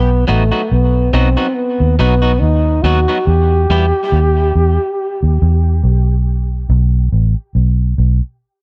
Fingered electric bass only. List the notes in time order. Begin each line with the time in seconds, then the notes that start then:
Already playing: B1
0.29 A1
0.72 B1
1.13 B1
1.80 D#2
2.00 B1
2.42 D#2
2.84 D#2
3.27 E2
3.70 E2
4.12 D#2
4.55 E2
5.23 D#2
5.42 E2
5.84 B1
6.69 B1
7.12 A1
7.55 B1
7.98 B1